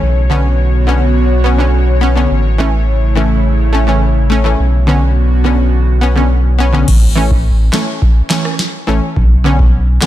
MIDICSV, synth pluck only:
0, 0, Header, 1, 2, 480
1, 0, Start_track
1, 0, Tempo, 571429
1, 18, Time_signature, 4, 2, 24, 8
1, 8453, End_track
2, 0, Start_track
2, 0, Title_t, "Synth pluck"
2, 0, Program_c, 0, 84
2, 250, Note_on_c, 0, 50, 85
2, 258, Note_on_c, 0, 59, 77
2, 265, Note_on_c, 0, 61, 94
2, 350, Note_off_c, 0, 50, 0
2, 354, Note_off_c, 0, 59, 0
2, 358, Note_off_c, 0, 61, 0
2, 729, Note_on_c, 0, 50, 83
2, 737, Note_on_c, 0, 59, 73
2, 745, Note_on_c, 0, 61, 94
2, 829, Note_off_c, 0, 50, 0
2, 833, Note_off_c, 0, 59, 0
2, 838, Note_off_c, 0, 61, 0
2, 1209, Note_on_c, 0, 59, 81
2, 1224, Note_on_c, 0, 61, 91
2, 1261, Note_off_c, 0, 59, 0
2, 1269, Note_off_c, 0, 61, 0
2, 1329, Note_on_c, 0, 50, 74
2, 1337, Note_on_c, 0, 59, 70
2, 1345, Note_on_c, 0, 61, 86
2, 1430, Note_off_c, 0, 50, 0
2, 1434, Note_off_c, 0, 59, 0
2, 1438, Note_off_c, 0, 61, 0
2, 1688, Note_on_c, 0, 59, 85
2, 1704, Note_on_c, 0, 61, 97
2, 1741, Note_off_c, 0, 59, 0
2, 1749, Note_off_c, 0, 61, 0
2, 1810, Note_on_c, 0, 50, 77
2, 1817, Note_on_c, 0, 59, 71
2, 1825, Note_on_c, 0, 61, 89
2, 1910, Note_off_c, 0, 50, 0
2, 1914, Note_off_c, 0, 59, 0
2, 1918, Note_off_c, 0, 61, 0
2, 2170, Note_on_c, 0, 52, 86
2, 2177, Note_on_c, 0, 57, 78
2, 2185, Note_on_c, 0, 61, 95
2, 2270, Note_off_c, 0, 52, 0
2, 2274, Note_off_c, 0, 57, 0
2, 2278, Note_off_c, 0, 61, 0
2, 2650, Note_on_c, 0, 52, 83
2, 2657, Note_on_c, 0, 57, 78
2, 2665, Note_on_c, 0, 61, 89
2, 2750, Note_off_c, 0, 52, 0
2, 2754, Note_off_c, 0, 57, 0
2, 2758, Note_off_c, 0, 61, 0
2, 3130, Note_on_c, 0, 57, 85
2, 3145, Note_on_c, 0, 61, 90
2, 3182, Note_off_c, 0, 57, 0
2, 3190, Note_off_c, 0, 61, 0
2, 3249, Note_on_c, 0, 52, 79
2, 3257, Note_on_c, 0, 57, 71
2, 3264, Note_on_c, 0, 61, 84
2, 3350, Note_off_c, 0, 52, 0
2, 3354, Note_off_c, 0, 57, 0
2, 3357, Note_off_c, 0, 61, 0
2, 3610, Note_on_c, 0, 57, 90
2, 3626, Note_on_c, 0, 61, 98
2, 3662, Note_off_c, 0, 57, 0
2, 3670, Note_off_c, 0, 61, 0
2, 3729, Note_on_c, 0, 52, 83
2, 3737, Note_on_c, 0, 57, 72
2, 3745, Note_on_c, 0, 61, 88
2, 3830, Note_off_c, 0, 52, 0
2, 3834, Note_off_c, 0, 57, 0
2, 3838, Note_off_c, 0, 61, 0
2, 4090, Note_on_c, 0, 50, 85
2, 4098, Note_on_c, 0, 59, 80
2, 4106, Note_on_c, 0, 61, 95
2, 4190, Note_off_c, 0, 50, 0
2, 4194, Note_off_c, 0, 59, 0
2, 4198, Note_off_c, 0, 61, 0
2, 4570, Note_on_c, 0, 50, 83
2, 4578, Note_on_c, 0, 59, 75
2, 4586, Note_on_c, 0, 61, 88
2, 4670, Note_off_c, 0, 50, 0
2, 4674, Note_off_c, 0, 59, 0
2, 4678, Note_off_c, 0, 61, 0
2, 5050, Note_on_c, 0, 59, 87
2, 5066, Note_on_c, 0, 61, 95
2, 5102, Note_off_c, 0, 59, 0
2, 5110, Note_off_c, 0, 61, 0
2, 5170, Note_on_c, 0, 50, 78
2, 5178, Note_on_c, 0, 59, 70
2, 5186, Note_on_c, 0, 61, 87
2, 5270, Note_off_c, 0, 50, 0
2, 5274, Note_off_c, 0, 59, 0
2, 5278, Note_off_c, 0, 61, 0
2, 5531, Note_on_c, 0, 59, 86
2, 5546, Note_on_c, 0, 61, 99
2, 5582, Note_off_c, 0, 59, 0
2, 5590, Note_off_c, 0, 61, 0
2, 5650, Note_on_c, 0, 50, 81
2, 5658, Note_on_c, 0, 59, 71
2, 5666, Note_on_c, 0, 61, 89
2, 5750, Note_off_c, 0, 50, 0
2, 5754, Note_off_c, 0, 59, 0
2, 5758, Note_off_c, 0, 61, 0
2, 6010, Note_on_c, 0, 52, 86
2, 6018, Note_on_c, 0, 57, 78
2, 6025, Note_on_c, 0, 61, 94
2, 6110, Note_off_c, 0, 52, 0
2, 6114, Note_off_c, 0, 57, 0
2, 6118, Note_off_c, 0, 61, 0
2, 6490, Note_on_c, 0, 52, 88
2, 6498, Note_on_c, 0, 57, 78
2, 6506, Note_on_c, 0, 61, 95
2, 6590, Note_off_c, 0, 52, 0
2, 6594, Note_off_c, 0, 57, 0
2, 6598, Note_off_c, 0, 61, 0
2, 6970, Note_on_c, 0, 52, 89
2, 6978, Note_on_c, 0, 57, 78
2, 6986, Note_on_c, 0, 61, 99
2, 7070, Note_off_c, 0, 52, 0
2, 7074, Note_off_c, 0, 57, 0
2, 7078, Note_off_c, 0, 61, 0
2, 7451, Note_on_c, 0, 52, 89
2, 7459, Note_on_c, 0, 57, 82
2, 7466, Note_on_c, 0, 61, 98
2, 7550, Note_off_c, 0, 52, 0
2, 7554, Note_off_c, 0, 57, 0
2, 7558, Note_off_c, 0, 61, 0
2, 7930, Note_on_c, 0, 50, 86
2, 7937, Note_on_c, 0, 59, 78
2, 7945, Note_on_c, 0, 61, 94
2, 8030, Note_off_c, 0, 50, 0
2, 8034, Note_off_c, 0, 59, 0
2, 8038, Note_off_c, 0, 61, 0
2, 8411, Note_on_c, 0, 50, 88
2, 8419, Note_on_c, 0, 59, 79
2, 8426, Note_on_c, 0, 61, 92
2, 8453, Note_off_c, 0, 50, 0
2, 8453, Note_off_c, 0, 59, 0
2, 8453, Note_off_c, 0, 61, 0
2, 8453, End_track
0, 0, End_of_file